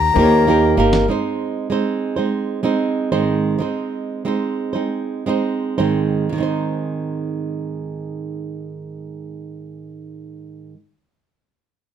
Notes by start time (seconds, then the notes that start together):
Already playing: D#2 D#3 A#3 D#4 G4 A#4 D#5 A#5
0.14 D#2 A#3 G4 C5
0.18 D#4 G4 A#4
0.22 C#5
0.47 A#3 D#4 G4 A#4
0.77 G1 A#3 D#4 G4 A#4
0.93 snare
1.08 G#3 C4 D#4 C5
1.70 G#3 C4 D#4 C5
2.16 G#3 C4 D#4 C5
2.63 G#3 C4 D#4 C5
3.12 G#2 D#3 G#3 C4 D#4 C5
3.59 G#3 C4 D#4 C5
4.25 G#3 C4 D#4 C5
4.73 G#3 C4 D#4 C5
5.26 G#3 C4 D#4 C5
5.78 G#2 D#3 G#3 C4 D#4 C5
6.29 G#2 D#3
6.36 G#3 C4
6.40 D#4 C5